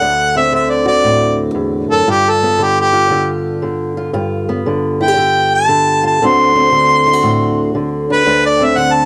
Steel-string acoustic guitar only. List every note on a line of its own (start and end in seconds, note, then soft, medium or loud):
0.00 1.54 D2 medium
0.00 0.51 D3 medium
0.00 2.07 D4 medium
0.36 2.06 C4 medium
0.52 2.57 D3 medium
0.86 2.05 F#4 medium
1.04 2.07 A2 medium
1.55 1.90 E2 medium
1.91 2.07 F#2 medium
2.07 4.11 G2 medium
2.07 2.93 F4 medium
2.43 4.12 B3 medium
2.58 3.09 D3 medium
2.93 3.96 F4 medium
3.10 3.61 D3 medium
3.62 4.65 D3 medium
3.97 4.12 F4 medium
4.13 6.18 G2 medium
4.13 6.02 F4 medium
4.49 6.18 B3 medium
4.66 5.16 D3 medium
5.01 5.08 E4 medium
5.08 6.20 G4 medium
5.17 5.67 D3 medium
5.68 6.20 D3 medium
6.03 6.18 F4 medium
6.22 8.25 D2 medium
6.22 6.71 D3 medium
6.22 6.55 C4 medium
6.22 8.09 D4 medium
6.22 7.05 F#4 medium
6.55 8.25 C4 medium
6.72 7.74 D3 medium
7.06 7.13 E4 medium
7.13 8.26 F#4 medium
7.23 7.75 A2 medium
7.75 8.76 D3 medium
8.10 8.25 D4 medium
8.26 9.05 D2 medium
8.26 9.05 D4 medium
8.61 9.05 C4 medium
8.77 9.05 D3 medium